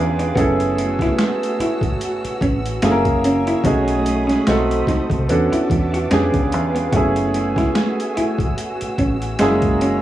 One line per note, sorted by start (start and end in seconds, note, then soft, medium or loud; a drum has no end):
0.00 0.31 E2 medium
0.00 0.33 B3 medium
0.00 0.34 C#4 medium
0.00 0.36 D4 medium
0.00 0.34 F4 medium
0.00 0.36 G4 medium
0.00 0.36 G#4 medium
0.00 0.34 B4 medium
0.00 0.33 D6 medium
0.19 0.31 D4 medium
0.19 closed hi-hat soft
0.35 1.07 F#1 loud
0.35 2.79 A3 medium
0.35 2.77 B3 medium
0.35 2.78 C#4 medium
0.35 2.78 E4 medium
0.35 3.60 F#4 loud
0.35 0.52 F#4 medium
0.35 2.79 G#4 medium
0.35 2.79 A4 medium
0.35 3.61 E6 loud
0.35 kick loud
0.35 closed hi-hat medium
0.60 closed hi-hat soft
0.78 muted clean electric guitar stroke soft
0.78 closed hi-hat medium
0.99 1.14 E4 medium
0.99 kick medium
0.99 snare soft
0.99 closed hi-hat soft
1.18 finger snap medium
1.18 snare loud
1.18 closed hi-hat medium
1.43 closed hi-hat soft
1.59 1.76 E4 medium
1.59 muted fingered electric bass stroke soft
1.59 closed hi-hat medium
1.81 1.97 G#1 medium
1.81 kick medium
1.81 closed hi-hat soft
2.01 closed hi-hat medium
2.24 muted fingered electric bass stroke soft
2.24 closed hi-hat soft
2.41 2.77 A1 medium
2.41 2.58 C#4 medium
2.41 kick medium
2.41 closed hi-hat medium
2.66 closed hi-hat soft
2.80 3.53 F#1 loud
2.80 3.64 A#3 medium
2.80 3.63 C#4 medium
2.80 3.65 E4 medium
2.80 4.44 C#5 medium
2.80 3.62 A#5 medium
2.80 finger snap medium
2.80 muted clean electric guitar stroke soft
2.80 snare loud
2.80 closed hi-hat medium
2.85 3.65 G#4 medium
2.85 2.91 A4 medium
2.91 3.69 A#4 medium
3.05 kick medium
3.05 closed hi-hat soft
3.24 3.41 C#4 medium
3.24 closed hi-hat medium
3.47 3.60 E4 medium
3.47 closed hi-hat soft
3.64 4.35 B1 loud
3.64 4.45 A3 medium
3.64 4.46 A3 medium
3.64 3.81 B3 medium
3.64 4.47 C#4 medium
3.64 4.47 D#4 medium
3.64 4.47 F#4 medium
3.64 4.47 G#4 medium
3.64 5.26 B5 medium
3.64 4.45 D#6 medium
3.64 kick loud
3.64 closed hi-hat medium
3.88 closed hi-hat soft
4.06 muted clean electric guitar stroke soft
4.06 closed hi-hat medium
4.27 4.40 C#4 medium
4.27 snare soft
4.27 closed hi-hat soft
4.46 4.82 B1 medium
4.46 5.29 A3 medium
4.46 5.29 C4 medium
4.46 5.29 D#4 medium
4.46 5.29 F#4 medium
4.46 5.28 A4 medium
4.46 5.29 A4 medium
4.46 5.28 C5 medium
4.46 5.27 D#6 medium
4.46 finger snap medium
4.46 snare loud
4.46 closed hi-hat medium
4.71 closed hi-hat soft
4.87 5.04 D#4 medium
4.87 muted fingered electric bass stroke soft
4.87 kick medium
4.87 snare soft
4.87 closed hi-hat medium
5.10 5.26 C2 medium
5.10 kick medium
5.10 closed hi-hat soft
5.29 5.49 E2 medium
5.29 6.09 B3 medium
5.29 6.09 C#4 medium
5.29 6.10 D4 medium
5.29 6.10 F#4 medium
5.29 6.11 F#4 medium
5.29 6.12 A4 medium
5.29 6.10 E5 medium
5.29 6.10 A5 medium
5.29 6.91 D6 medium
5.29 closed hi-hat medium
5.52 5.65 E4 medium
5.52 muted fingered electric bass stroke medium
5.52 closed hi-hat soft
5.70 6.06 E2 medium
5.70 muted clean electric guitar stroke soft
5.70 kick medium
5.70 closed hi-hat medium
5.94 6.06 F#4 medium
5.94 closed hi-hat soft
6.10 6.31 F2 loud
6.10 6.92 B3 medium
6.10 6.93 C#4 medium
6.10 6.93 D4 medium
6.10 6.28 D4 medium
6.10 6.92 F4 medium
6.10 6.94 G4 medium
6.10 6.94 G#4 medium
6.10 6.92 B4 medium
6.10 6.92 F5 medium
6.10 finger snap medium
6.10 snare loud
6.10 closed hi-hat medium
6.34 6.54 D2 medium
6.34 kick medium
6.34 closed hi-hat soft
6.52 6.88 E2 medium
6.52 muted clean electric guitar stroke soft
6.52 closed hi-hat medium
6.75 6.88 B3 medium
6.75 closed hi-hat soft
6.92 7.64 F#1 loud
6.92 9.35 A3 medium
6.92 9.37 A3 medium
6.92 9.36 B3 medium
6.92 9.36 C#4 medium
6.92 9.37 E4 medium
6.92 7.09 F#4 medium
6.92 10.02 F#4 medium
6.92 9.37 G#4 medium
6.92 9.37 G#5 medium
6.92 10.02 E6 loud
6.92 kick loud
6.92 closed hi-hat medium
7.16 closed hi-hat medium
7.34 muted clean electric guitar stroke soft
7.34 closed hi-hat medium
7.56 7.70 E4 medium
7.56 kick medium
7.56 snare soft
7.56 closed hi-hat soft
7.75 finger snap medium
7.75 snare loud
7.75 closed hi-hat medium
8.00 closed hi-hat soft
8.17 8.33 E4 medium
8.17 muted fingered electric bass stroke soft
8.17 closed hi-hat medium
8.38 8.55 G#1 medium
8.38 kick medium
8.38 closed hi-hat soft
8.58 closed hi-hat medium
8.81 muted fingered electric bass stroke soft
8.81 closed hi-hat medium
8.98 9.34 A1 medium
8.98 9.15 C#4 medium
8.98 kick medium
8.98 closed hi-hat medium
9.22 closed hi-hat soft
9.39 10.02 F#1 loud
9.39 10.02 G#3 medium
9.39 10.02 A#3 medium
9.39 10.02 C#4 medium
9.39 10.02 E4 medium
9.39 10.02 G#4 medium
9.39 10.02 C#5 medium
9.39 10.02 A#5 medium
9.39 finger snap medium
9.39 muted clean electric guitar stroke soft
9.39 snare medium
9.39 closed hi-hat medium
9.62 kick medium
9.62 closed hi-hat soft
9.81 9.98 C#4 medium
9.81 closed hi-hat medium